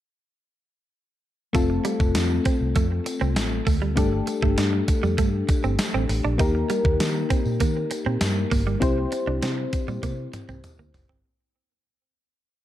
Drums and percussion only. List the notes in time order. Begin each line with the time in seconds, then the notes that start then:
1.55 kick, closed hi-hat, tambourine
1.85 closed hi-hat, tambourine
2.00 kick, tambourine
2.15 snare, closed hi-hat, tambourine
2.45 kick, closed hi-hat, tambourine
2.76 kick, closed hi-hat, tambourine
3.06 closed hi-hat, tambourine
3.21 tambourine
3.36 snare, closed hi-hat, tambourine
3.67 kick, open hi-hat, tambourine
3.97 kick, closed hi-hat, tambourine
4.27 closed hi-hat, tambourine
4.42 kick
4.58 snare, closed hi-hat, tambourine
4.88 kick, closed hi-hat, tambourine
5.03 tambourine
5.18 kick, closed hi-hat, tambourine
5.49 kick, closed hi-hat, tambourine
5.63 tambourine
5.79 snare, closed hi-hat, tambourine
6.09 open hi-hat, tambourine
6.39 kick, closed hi-hat, tambourine
6.70 closed hi-hat, tambourine
6.85 kick
7.00 snare, closed hi-hat, tambourine
7.30 kick, closed hi-hat, tambourine
7.45 tambourine
7.60 kick, closed hi-hat, tambourine
7.91 closed hi-hat, tambourine
8.21 snare, closed hi-hat, tambourine
8.51 kick, open hi-hat, tambourine
8.82 kick, closed hi-hat, tambourine
9.12 closed hi-hat, tambourine
9.42 snare, closed hi-hat, tambourine
9.73 kick, closed hi-hat, tambourine
9.88 tambourine
10.03 kick, closed hi-hat, high tom, tambourine
10.33 closed hi-hat, mid tom, tambourine
10.49 mid tom, tambourine
10.64 closed hi-hat, mid tom, tambourine
10.94 floor tom, open hi-hat, tambourine
11.09 floor tom